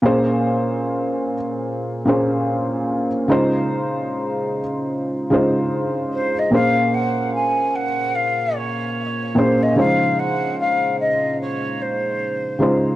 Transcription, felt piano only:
X:1
M:4/4
L:1/8
Q:"Swing 16ths" 1/4=74
K:Bbm
V:1 name="Felt piano"
[B,,B,DAc]3 z2 [B,,B,DAc]2 z | [D,A,EFc]3 z2 [D,A,EFc]2 z | [B,,B,DAc]3 z4 [B,,B,DAc] | [D,F,A,Ec]3 z4 [D,A,EFc] |]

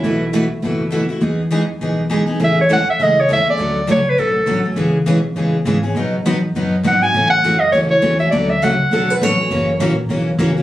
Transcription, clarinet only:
X:1
M:4/4
L:1/8
Q:"Swing" 1/4=203
K:Alyd
V:1 name="Clarinet"
z8 | z8 | e c f e d c e =d- | =d2 c B A3 z |
z8 | z6 f g- | g f2 d c c2 e | =d e f4 z2 |
z8 |]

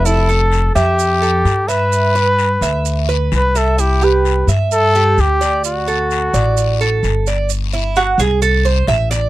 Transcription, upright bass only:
X:1
M:4/4
L:1/8
Q:1/4=129
K:G
V:1 name="Upright bass" clef=bass
=F,,,3 =F,,3 G,,2- | G,,3 D,,3 C,,2- | C,,3 G,,3 D,,2- | D,,3 A,,,3 G,,,2- |
G,,,3 C,,3 A,,,2 |]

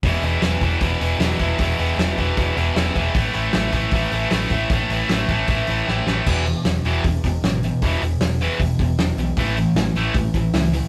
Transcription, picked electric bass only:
X:1
M:4/4
L:1/8
Q:1/4=154
K:Emix
V:1 name="Picked electric bass" clef=bass
E,,, E,,, E,,, E,,, E,,, E,,, E,,, E,,, | E,,, E,,, E,,, E,,, E,,, E,,, E,,, E,,, | A,,, A,,, A,,, A,,, A,,, A,,, A,,, A,,, | A,,, A,,, A,,, A,,, A,,, A,,, A,,, A,,, |
E,,,2 E,,, E,,, E,,, E,,, G,,,2 | E,,, E,,, E,,,2 E,,, E,,, E,,, B,,, | A,,,2 A,,, A,,, A,,, A,,, C,,2 |]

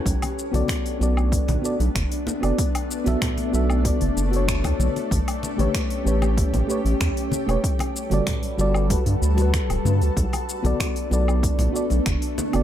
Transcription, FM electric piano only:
X:1
M:4/4
L:1/16
Q:1/4=95
K:Bm
V:1 name="FM electric piano"
z3 [B,FAd]3 [B,FAd]4 [B,FAd] z4 [B,FAd] | z3 [B,FAe]3 [B,FAe]2 [B,FAd] z2 [B,FAc]4- [B,FAc] | z3 [A,GBc]3 [A,GBc]4 [A,GBc] z4 [A,GBc] | z3 [G,FAd]3 [G,FAd]2 [G,FAB] z2 [G,FAB]4- [G,FAB] |
z3 [B,FAd]3 [B,FAd]4 [B,FAd] z4 [B,FAd] |]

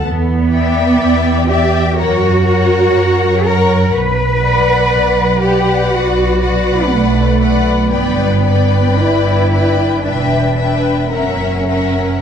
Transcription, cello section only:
X:1
M:4/4
L:1/8
Q:1/4=60
K:Bm
V:1 name="Cello section"
B,3 G F3 ^A | B3 G F2 A,2 | B,2 E2 D2 C2 |]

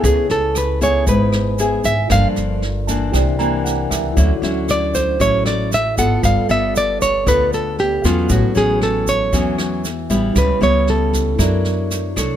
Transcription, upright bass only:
X:1
M:4/4
L:1/16
Q:1/4=116
K:C#phr
V:1 name="Upright bass" clef=bass
C,, z C,,6 G,,,6 G,,,2 | =G,,, z G,,,6 =C,,6 ^C,,2 | D,, z D,,6 A,,,6 G,,,2 | =G,,, z G,,,6 D,,6 E,,2 |
A,,, z A,,,6 E,,6 A,,,2 | C,, z C,,6 F,,6 =C,,2 |]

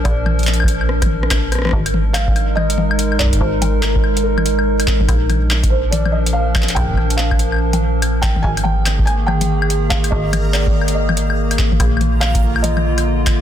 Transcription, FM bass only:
X:1
M:4/4
L:1/8
Q:"Swing 16ths" 1/4=143
K:Bbmix
V:1 name="FM bass" clef=bass
B,,,8 | A,,,8 | A,,,8 | B,,,8 |
B,,,8 | A,,,8 | A,,,8 | B,,,8 |]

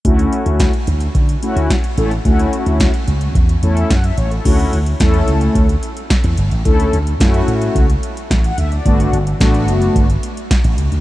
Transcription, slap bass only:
X:1
M:4/4
L:1/16
Q:1/4=109
K:D
V:1 name="Slap bass" clef=bass
D,,2 z D,,2 z D,,2 D,2 z D,, z2 A,,,2 | D,,2 z D,,2 z C,,2 E,,2 E,,2 F,,2 A,,,2 | D,,2 D,,2 E,,2 C,,2 D,,2 z3 E,, G,,, A,,, | D,,2 D,,2 F,,2 A,,2 C,,2 z2 A,,,2 D,,2 |
G,,,2 G,,,2 A,,,2 F,,,2 G,,,2 z3 A,,, C,, D,, |]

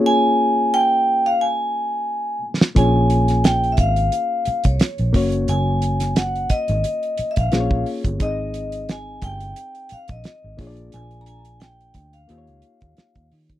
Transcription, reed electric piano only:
X:1
M:4/4
L:1/8
Q:"Swing 16ths" 1/4=88
K:Bbdor
V:1 name="Reed electric piano"
[B,DFAd]6- [B,DFAd] z | [B,DFAd]6- [B,DFAd] [B,D_Gd]- | [B,D_Gd]6 [B,DFAcd]2 | [CEAe]6- [CEAe] [B,=DFA_d=d]- |
[B,=DFA_d=d]4 [B,EFGc_d]4 |]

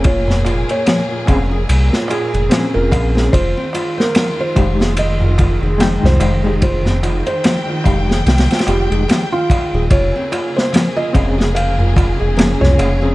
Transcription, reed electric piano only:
X:1
M:4/4
L:1/16
Q:"Swing 16ths" 1/4=73
K:Fm
V:1 name="Reed electric piano"
z6 [CDA] z4 z [CDA]3 [CDA] | z6 [A,EG] z4 z [A,Eg]3 [A,EG] | z6 [A,EG] z4 [A,EG] z4 | z6 [CDA] z4 z [B,DA]3 [CDA] |]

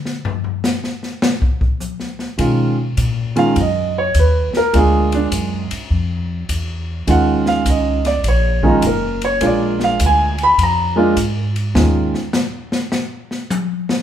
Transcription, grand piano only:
X:1
M:4/4
L:1/8
Q:"Swing" 1/4=103
K:Bbphr
V:1 name="Grand piano"
z8 | z3 f ^d _d =B ^A | A =D z6 | g f e =d _d F B d |
=d f a c' b2 z2 | z8 |]
V:2 name="Grand piano"
z8 | [^D,A,_DF] z2 [^D,A,_DF] z4 | [A,B,=DF]3 z4 z | [E,A,DF]3 z2 [E,A,DE] z2 |
[A,B,=DF]3 z2 [A,B,DF] z2 | [E,A,DF] z6 z |]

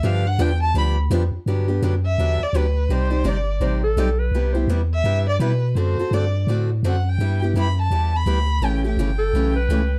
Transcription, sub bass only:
X:1
M:4/4
L:1/8
Q:"Swing" 1/4=168
K:Gmix
V:1 name="Sub bass" clef=bass
G,,2 E,,2 D,,2 F,, F,, | [K:G] G,,2 F,,2 E,, E,, D,,2 | C,,2 G,,,2 A,,,2 B,,,2 | C,,2 E,,2 G,,2 B,,2 |
F,, F,, G,,2 A,,2 F,,2 | G,,2 F,,2 E,,2 D,,2 | A,,,2 G,,,2 B,,,2 ^C,,2 |]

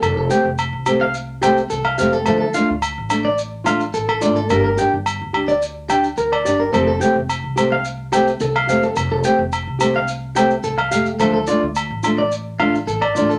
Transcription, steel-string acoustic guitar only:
X:1
M:4/4
L:1/8
Q:1/4=108
K:F
V:1 name="Steel-string acoustic guitar"
z [A,CG] z [A,CG] z [A,CG] z [A,CG] | [F,A,DF] [A,DF] z [A,D] z [A,DF] z [A,DF] | [B,DG] [DG] z [DG] z [DG] z [DG] | [F,A,CG] [A,CG] z [A,CG] z [A,CG] z [A,CG] |
z [A,CG] z [A,CG] z [A,CG] z [A,G] | [F,A,DF] [A,DF] z [A,DF] z [A,DF] z [A,DF] |]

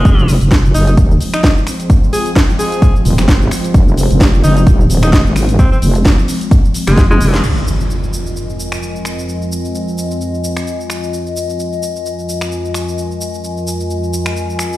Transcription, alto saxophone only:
X:1
M:4/4
L:1/16
Q:"Swing 16ths" 1/4=130
K:Fm
V:1 name="Alto saxophone"
A,3 z3 E E z3 E E z3 | z2 A z3 A3 z6 z | z6 E E z3 E E z3 | C C z8 z A, z A,3 |
z16 | z16 | z16 | z16 |]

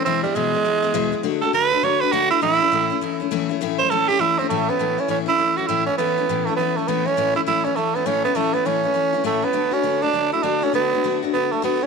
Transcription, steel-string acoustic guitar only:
X:1
M:4/4
L:1/8
Q:"Swing" 1/4=202
K:A
V:1 name="Steel-string acoustic guitar"
[E,,B,,E,G,B,E] [E,G,B,E] [E,,B,,E,G,B,E] [E,G,B,E] [E,G,B,E] [E,G,B,E] [E,,B,,E,G,B,E] [E,G,B,E] | [D,A,DF] [A,DF] [D,A,DF] [A,DF] [D,A,DF] [A,DF] [D,A,DF] D | [A,,E,A,CE] [A,CE] [A,,E,A,CE] [A,CE] [E,A,CE] [A,CE] [A,,E,A,CE] [A,CE] | [A,,E,A,CE] [A,C] [A,,E,A,CE] [A,CE] [E,A,CE] [A,CE] [A,,E,A,CE] [A,CE] |
[A,,E,A,CE] [A,CE] [A,,E,A,CE] [A,CE] [E,A,CE] [A,CE] [A,,E,A,CE] [CE] | [A,,E,A,CE] [A,CE] [A,,E,A,CE] [A,CE] [E,A,CE] [A,CE] [A,,E,A,CE] [A,CE] | [A,,E,A,CE] [A,CE] [A,,E,A,CE] [A,CE] [E,A,CE] [A,CE] [A,,E,A,CE] [A,CE] | [A,,E,A,CE] [A,CE] [A,,E,A,CE] [A,CE] [E,A,CE] [A,CE] [A,,E,A,CE] [A,CE] |
[D,A,DF] [A,DF] [D,A,DF] [A,DF] [D,A,DF] [A,DF] [D,A,DF] [A,DF] | [D,A,DF] [A,DF] [D,A,DF] [A,DF] [D,A,DF] [A,DF] [D,A,DF] [A,DF] |]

